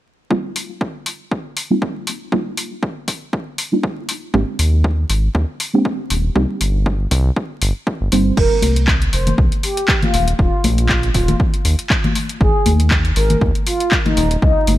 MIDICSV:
0, 0, Header, 1, 5, 480
1, 0, Start_track
1, 0, Tempo, 504202
1, 291, Time_signature, 4, 2, 24, 8
1, 14072, End_track
2, 0, Start_track
2, 0, Title_t, "Soft synth lead"
2, 0, Program_c, 0, 80
2, 7969, Note_on_c, 0, 70, 94
2, 8267, Note_off_c, 0, 70, 0
2, 8690, Note_on_c, 0, 72, 84
2, 8890, Note_off_c, 0, 72, 0
2, 9171, Note_on_c, 0, 67, 95
2, 9468, Note_off_c, 0, 67, 0
2, 9543, Note_on_c, 0, 65, 95
2, 9829, Note_off_c, 0, 65, 0
2, 9891, Note_on_c, 0, 65, 90
2, 10188, Note_off_c, 0, 65, 0
2, 10264, Note_on_c, 0, 65, 94
2, 10550, Note_off_c, 0, 65, 0
2, 10614, Note_on_c, 0, 65, 88
2, 10811, Note_off_c, 0, 65, 0
2, 11812, Note_on_c, 0, 68, 93
2, 12108, Note_off_c, 0, 68, 0
2, 12529, Note_on_c, 0, 70, 83
2, 12729, Note_off_c, 0, 70, 0
2, 13009, Note_on_c, 0, 65, 96
2, 13307, Note_off_c, 0, 65, 0
2, 13379, Note_on_c, 0, 63, 91
2, 13668, Note_off_c, 0, 63, 0
2, 13729, Note_on_c, 0, 63, 94
2, 14027, Note_off_c, 0, 63, 0
2, 14072, End_track
3, 0, Start_track
3, 0, Title_t, "Synth stab"
3, 0, Program_c, 1, 62
3, 287, Note_on_c, 1, 55, 88
3, 289, Note_on_c, 1, 58, 80
3, 291, Note_on_c, 1, 60, 77
3, 293, Note_on_c, 1, 63, 79
3, 295, Note_on_c, 1, 65, 101
3, 1590, Note_off_c, 1, 55, 0
3, 1591, Note_off_c, 1, 58, 0
3, 1592, Note_off_c, 1, 60, 0
3, 1593, Note_off_c, 1, 63, 0
3, 1594, Note_off_c, 1, 65, 0
3, 1621, Note_on_c, 1, 55, 88
3, 1622, Note_on_c, 1, 58, 82
3, 1625, Note_on_c, 1, 60, 78
3, 1626, Note_on_c, 1, 63, 78
3, 1628, Note_on_c, 1, 65, 92
3, 2184, Note_off_c, 1, 55, 0
3, 2185, Note_off_c, 1, 58, 0
3, 2186, Note_off_c, 1, 60, 0
3, 2187, Note_off_c, 1, 63, 0
3, 2188, Note_off_c, 1, 65, 0
3, 2207, Note_on_c, 1, 55, 89
3, 2209, Note_on_c, 1, 58, 78
3, 2211, Note_on_c, 1, 62, 81
3, 2213, Note_on_c, 1, 63, 83
3, 2215, Note_on_c, 1, 65, 98
3, 3510, Note_off_c, 1, 55, 0
3, 3511, Note_off_c, 1, 58, 0
3, 3512, Note_off_c, 1, 62, 0
3, 3513, Note_off_c, 1, 63, 0
3, 3514, Note_off_c, 1, 65, 0
3, 3540, Note_on_c, 1, 55, 86
3, 3541, Note_on_c, 1, 58, 77
3, 3543, Note_on_c, 1, 62, 81
3, 3546, Note_on_c, 1, 63, 81
3, 3548, Note_on_c, 1, 65, 96
3, 4103, Note_off_c, 1, 55, 0
3, 4104, Note_off_c, 1, 58, 0
3, 4105, Note_off_c, 1, 62, 0
3, 4106, Note_off_c, 1, 63, 0
3, 4107, Note_off_c, 1, 65, 0
3, 4127, Note_on_c, 1, 56, 89
3, 4129, Note_on_c, 1, 58, 82
3, 4131, Note_on_c, 1, 60, 77
3, 4133, Note_on_c, 1, 62, 82
3, 4135, Note_on_c, 1, 67, 94
3, 5430, Note_off_c, 1, 56, 0
3, 5431, Note_off_c, 1, 58, 0
3, 5432, Note_off_c, 1, 60, 0
3, 5432, Note_off_c, 1, 62, 0
3, 5434, Note_off_c, 1, 67, 0
3, 5460, Note_on_c, 1, 56, 86
3, 5461, Note_on_c, 1, 58, 78
3, 5463, Note_on_c, 1, 60, 83
3, 5465, Note_on_c, 1, 62, 78
3, 5467, Note_on_c, 1, 67, 91
3, 6023, Note_off_c, 1, 56, 0
3, 6024, Note_off_c, 1, 58, 0
3, 6025, Note_off_c, 1, 60, 0
3, 6026, Note_off_c, 1, 62, 0
3, 6027, Note_off_c, 1, 67, 0
3, 6047, Note_on_c, 1, 55, 92
3, 6048, Note_on_c, 1, 58, 80
3, 6051, Note_on_c, 1, 60, 80
3, 6053, Note_on_c, 1, 63, 79
3, 6055, Note_on_c, 1, 67, 99
3, 7350, Note_off_c, 1, 55, 0
3, 7350, Note_off_c, 1, 58, 0
3, 7352, Note_off_c, 1, 60, 0
3, 7353, Note_off_c, 1, 63, 0
3, 7353, Note_off_c, 1, 67, 0
3, 7729, Note_on_c, 1, 55, 79
3, 7731, Note_on_c, 1, 58, 65
3, 7731, Note_on_c, 1, 60, 71
3, 7732, Note_on_c, 1, 63, 65
3, 7733, Note_on_c, 1, 72, 80
3, 7944, Note_off_c, 1, 55, 0
3, 7945, Note_off_c, 1, 58, 0
3, 7945, Note_off_c, 1, 60, 0
3, 7946, Note_off_c, 1, 63, 0
3, 7946, Note_off_c, 1, 72, 0
3, 14072, End_track
4, 0, Start_track
4, 0, Title_t, "Analog synth bass"
4, 0, Program_c, 2, 38
4, 4130, Note_on_c, 2, 32, 92
4, 4229, Note_off_c, 2, 32, 0
4, 4371, Note_on_c, 2, 39, 80
4, 4807, Note_off_c, 2, 39, 0
4, 4849, Note_on_c, 2, 32, 99
4, 5035, Note_off_c, 2, 32, 0
4, 5091, Note_on_c, 2, 39, 99
4, 5189, Note_off_c, 2, 39, 0
4, 5810, Note_on_c, 2, 27, 95
4, 5995, Note_off_c, 2, 27, 0
4, 6050, Note_on_c, 2, 36, 92
4, 6149, Note_off_c, 2, 36, 0
4, 6291, Note_on_c, 2, 31, 79
4, 6727, Note_off_c, 2, 31, 0
4, 6770, Note_on_c, 2, 36, 103
4, 6955, Note_off_c, 2, 36, 0
4, 7251, Note_on_c, 2, 31, 94
4, 7349, Note_off_c, 2, 31, 0
4, 7625, Note_on_c, 2, 31, 99
4, 7704, Note_off_c, 2, 31, 0
4, 7732, Note_on_c, 2, 31, 90
4, 7916, Note_off_c, 2, 31, 0
4, 7971, Note_on_c, 2, 29, 88
4, 8069, Note_off_c, 2, 29, 0
4, 8212, Note_on_c, 2, 36, 81
4, 8647, Note_off_c, 2, 36, 0
4, 8692, Note_on_c, 2, 29, 105
4, 8876, Note_off_c, 2, 29, 0
4, 8930, Note_on_c, 2, 36, 99
4, 9029, Note_off_c, 2, 36, 0
4, 9650, Note_on_c, 2, 27, 97
4, 9835, Note_off_c, 2, 27, 0
4, 9891, Note_on_c, 2, 27, 87
4, 9989, Note_off_c, 2, 27, 0
4, 10130, Note_on_c, 2, 34, 80
4, 10566, Note_off_c, 2, 34, 0
4, 10611, Note_on_c, 2, 27, 101
4, 10795, Note_off_c, 2, 27, 0
4, 11090, Note_on_c, 2, 39, 95
4, 11189, Note_off_c, 2, 39, 0
4, 11811, Note_on_c, 2, 32, 97
4, 11909, Note_off_c, 2, 32, 0
4, 12051, Note_on_c, 2, 39, 79
4, 12487, Note_off_c, 2, 39, 0
4, 12531, Note_on_c, 2, 32, 101
4, 12715, Note_off_c, 2, 32, 0
4, 12770, Note_on_c, 2, 39, 100
4, 12869, Note_off_c, 2, 39, 0
4, 13489, Note_on_c, 2, 27, 95
4, 13675, Note_off_c, 2, 27, 0
4, 13730, Note_on_c, 2, 36, 92
4, 13829, Note_off_c, 2, 36, 0
4, 13970, Note_on_c, 2, 31, 78
4, 14072, Note_off_c, 2, 31, 0
4, 14072, End_track
5, 0, Start_track
5, 0, Title_t, "Drums"
5, 291, Note_on_c, 9, 36, 106
5, 386, Note_off_c, 9, 36, 0
5, 532, Note_on_c, 9, 46, 93
5, 627, Note_off_c, 9, 46, 0
5, 771, Note_on_c, 9, 36, 99
5, 866, Note_off_c, 9, 36, 0
5, 1010, Note_on_c, 9, 46, 90
5, 1105, Note_off_c, 9, 46, 0
5, 1251, Note_on_c, 9, 36, 107
5, 1346, Note_off_c, 9, 36, 0
5, 1491, Note_on_c, 9, 46, 92
5, 1586, Note_off_c, 9, 46, 0
5, 1731, Note_on_c, 9, 36, 112
5, 1826, Note_off_c, 9, 36, 0
5, 1971, Note_on_c, 9, 46, 102
5, 2067, Note_off_c, 9, 46, 0
5, 2211, Note_on_c, 9, 36, 112
5, 2306, Note_off_c, 9, 36, 0
5, 2451, Note_on_c, 9, 46, 101
5, 2546, Note_off_c, 9, 46, 0
5, 2690, Note_on_c, 9, 36, 113
5, 2786, Note_off_c, 9, 36, 0
5, 2930, Note_on_c, 9, 36, 59
5, 2930, Note_on_c, 9, 46, 93
5, 3025, Note_off_c, 9, 36, 0
5, 3025, Note_off_c, 9, 46, 0
5, 3170, Note_on_c, 9, 36, 107
5, 3265, Note_off_c, 9, 36, 0
5, 3410, Note_on_c, 9, 46, 97
5, 3505, Note_off_c, 9, 46, 0
5, 3650, Note_on_c, 9, 36, 121
5, 3745, Note_off_c, 9, 36, 0
5, 3891, Note_on_c, 9, 46, 107
5, 3986, Note_off_c, 9, 46, 0
5, 4130, Note_on_c, 9, 36, 120
5, 4225, Note_off_c, 9, 36, 0
5, 4371, Note_on_c, 9, 46, 101
5, 4466, Note_off_c, 9, 46, 0
5, 4610, Note_on_c, 9, 36, 119
5, 4705, Note_off_c, 9, 36, 0
5, 4851, Note_on_c, 9, 46, 100
5, 4946, Note_off_c, 9, 46, 0
5, 5090, Note_on_c, 9, 36, 111
5, 5185, Note_off_c, 9, 36, 0
5, 5331, Note_on_c, 9, 46, 93
5, 5426, Note_off_c, 9, 46, 0
5, 5570, Note_on_c, 9, 36, 117
5, 5665, Note_off_c, 9, 36, 0
5, 5811, Note_on_c, 9, 46, 109
5, 5906, Note_off_c, 9, 46, 0
5, 6051, Note_on_c, 9, 36, 116
5, 6146, Note_off_c, 9, 36, 0
5, 6290, Note_on_c, 9, 46, 105
5, 6386, Note_off_c, 9, 46, 0
5, 6531, Note_on_c, 9, 36, 114
5, 6626, Note_off_c, 9, 36, 0
5, 6770, Note_on_c, 9, 36, 61
5, 6770, Note_on_c, 9, 46, 99
5, 6865, Note_off_c, 9, 46, 0
5, 6866, Note_off_c, 9, 36, 0
5, 7010, Note_on_c, 9, 36, 116
5, 7106, Note_off_c, 9, 36, 0
5, 7250, Note_on_c, 9, 46, 103
5, 7345, Note_off_c, 9, 46, 0
5, 7490, Note_on_c, 9, 36, 126
5, 7586, Note_off_c, 9, 36, 0
5, 7731, Note_on_c, 9, 46, 109
5, 7826, Note_off_c, 9, 46, 0
5, 7971, Note_on_c, 9, 36, 118
5, 7971, Note_on_c, 9, 49, 93
5, 8066, Note_off_c, 9, 36, 0
5, 8066, Note_off_c, 9, 49, 0
5, 8208, Note_on_c, 9, 63, 81
5, 8211, Note_on_c, 9, 46, 100
5, 8303, Note_off_c, 9, 63, 0
5, 8306, Note_off_c, 9, 46, 0
5, 8342, Note_on_c, 9, 42, 65
5, 8438, Note_off_c, 9, 42, 0
5, 8448, Note_on_c, 9, 39, 112
5, 8450, Note_on_c, 9, 36, 117
5, 8543, Note_off_c, 9, 39, 0
5, 8546, Note_off_c, 9, 36, 0
5, 8584, Note_on_c, 9, 42, 52
5, 8679, Note_off_c, 9, 42, 0
5, 8691, Note_on_c, 9, 46, 96
5, 8786, Note_off_c, 9, 46, 0
5, 8824, Note_on_c, 9, 42, 65
5, 8824, Note_on_c, 9, 63, 61
5, 8826, Note_on_c, 9, 64, 77
5, 8919, Note_off_c, 9, 42, 0
5, 8919, Note_off_c, 9, 63, 0
5, 8922, Note_off_c, 9, 64, 0
5, 8930, Note_on_c, 9, 36, 111
5, 9026, Note_off_c, 9, 36, 0
5, 9064, Note_on_c, 9, 42, 49
5, 9159, Note_off_c, 9, 42, 0
5, 9172, Note_on_c, 9, 46, 95
5, 9267, Note_off_c, 9, 46, 0
5, 9304, Note_on_c, 9, 42, 64
5, 9399, Note_off_c, 9, 42, 0
5, 9408, Note_on_c, 9, 39, 114
5, 9411, Note_on_c, 9, 36, 123
5, 9503, Note_off_c, 9, 39, 0
5, 9506, Note_off_c, 9, 36, 0
5, 9544, Note_on_c, 9, 42, 36
5, 9546, Note_on_c, 9, 64, 86
5, 9547, Note_on_c, 9, 63, 80
5, 9639, Note_off_c, 9, 42, 0
5, 9642, Note_off_c, 9, 64, 0
5, 9643, Note_off_c, 9, 63, 0
5, 9651, Note_on_c, 9, 46, 103
5, 9746, Note_off_c, 9, 46, 0
5, 9783, Note_on_c, 9, 42, 61
5, 9878, Note_off_c, 9, 42, 0
5, 9890, Note_on_c, 9, 36, 115
5, 9986, Note_off_c, 9, 36, 0
5, 10130, Note_on_c, 9, 46, 100
5, 10131, Note_on_c, 9, 63, 91
5, 10225, Note_off_c, 9, 46, 0
5, 10227, Note_off_c, 9, 63, 0
5, 10263, Note_on_c, 9, 42, 61
5, 10358, Note_off_c, 9, 42, 0
5, 10367, Note_on_c, 9, 39, 113
5, 10371, Note_on_c, 9, 36, 111
5, 10462, Note_off_c, 9, 39, 0
5, 10466, Note_off_c, 9, 36, 0
5, 10502, Note_on_c, 9, 42, 49
5, 10598, Note_off_c, 9, 42, 0
5, 10610, Note_on_c, 9, 46, 103
5, 10611, Note_on_c, 9, 36, 64
5, 10705, Note_off_c, 9, 46, 0
5, 10706, Note_off_c, 9, 36, 0
5, 10741, Note_on_c, 9, 63, 67
5, 10742, Note_on_c, 9, 42, 61
5, 10742, Note_on_c, 9, 64, 85
5, 10837, Note_off_c, 9, 42, 0
5, 10837, Note_off_c, 9, 63, 0
5, 10837, Note_off_c, 9, 64, 0
5, 10851, Note_on_c, 9, 36, 117
5, 10946, Note_off_c, 9, 36, 0
5, 10983, Note_on_c, 9, 42, 52
5, 11078, Note_off_c, 9, 42, 0
5, 11090, Note_on_c, 9, 46, 100
5, 11186, Note_off_c, 9, 46, 0
5, 11222, Note_on_c, 9, 42, 63
5, 11318, Note_off_c, 9, 42, 0
5, 11327, Note_on_c, 9, 39, 116
5, 11331, Note_on_c, 9, 36, 127
5, 11423, Note_off_c, 9, 39, 0
5, 11426, Note_off_c, 9, 36, 0
5, 11463, Note_on_c, 9, 42, 34
5, 11465, Note_on_c, 9, 64, 84
5, 11467, Note_on_c, 9, 63, 83
5, 11559, Note_off_c, 9, 42, 0
5, 11561, Note_off_c, 9, 64, 0
5, 11562, Note_off_c, 9, 63, 0
5, 11571, Note_on_c, 9, 46, 107
5, 11666, Note_off_c, 9, 46, 0
5, 11704, Note_on_c, 9, 42, 63
5, 11799, Note_off_c, 9, 42, 0
5, 11811, Note_on_c, 9, 36, 120
5, 11906, Note_off_c, 9, 36, 0
5, 12050, Note_on_c, 9, 46, 99
5, 12050, Note_on_c, 9, 63, 88
5, 12146, Note_off_c, 9, 46, 0
5, 12146, Note_off_c, 9, 63, 0
5, 12183, Note_on_c, 9, 42, 58
5, 12278, Note_off_c, 9, 42, 0
5, 12286, Note_on_c, 9, 39, 112
5, 12290, Note_on_c, 9, 36, 121
5, 12381, Note_off_c, 9, 39, 0
5, 12385, Note_off_c, 9, 36, 0
5, 12422, Note_on_c, 9, 42, 47
5, 12517, Note_off_c, 9, 42, 0
5, 12530, Note_on_c, 9, 46, 104
5, 12625, Note_off_c, 9, 46, 0
5, 12661, Note_on_c, 9, 63, 68
5, 12662, Note_on_c, 9, 42, 61
5, 12666, Note_on_c, 9, 64, 72
5, 12757, Note_off_c, 9, 42, 0
5, 12757, Note_off_c, 9, 63, 0
5, 12761, Note_off_c, 9, 64, 0
5, 12770, Note_on_c, 9, 36, 119
5, 12865, Note_off_c, 9, 36, 0
5, 12902, Note_on_c, 9, 42, 49
5, 12998, Note_off_c, 9, 42, 0
5, 13010, Note_on_c, 9, 46, 107
5, 13105, Note_off_c, 9, 46, 0
5, 13141, Note_on_c, 9, 42, 59
5, 13237, Note_off_c, 9, 42, 0
5, 13246, Note_on_c, 9, 39, 112
5, 13250, Note_on_c, 9, 36, 127
5, 13341, Note_off_c, 9, 39, 0
5, 13345, Note_off_c, 9, 36, 0
5, 13382, Note_on_c, 9, 42, 34
5, 13382, Note_on_c, 9, 64, 89
5, 13385, Note_on_c, 9, 63, 93
5, 13477, Note_off_c, 9, 64, 0
5, 13478, Note_off_c, 9, 42, 0
5, 13480, Note_off_c, 9, 63, 0
5, 13490, Note_on_c, 9, 46, 114
5, 13585, Note_off_c, 9, 46, 0
5, 13622, Note_on_c, 9, 42, 59
5, 13717, Note_off_c, 9, 42, 0
5, 13730, Note_on_c, 9, 36, 118
5, 13825, Note_off_c, 9, 36, 0
5, 13969, Note_on_c, 9, 46, 102
5, 13974, Note_on_c, 9, 63, 90
5, 14064, Note_off_c, 9, 46, 0
5, 14069, Note_off_c, 9, 63, 0
5, 14072, End_track
0, 0, End_of_file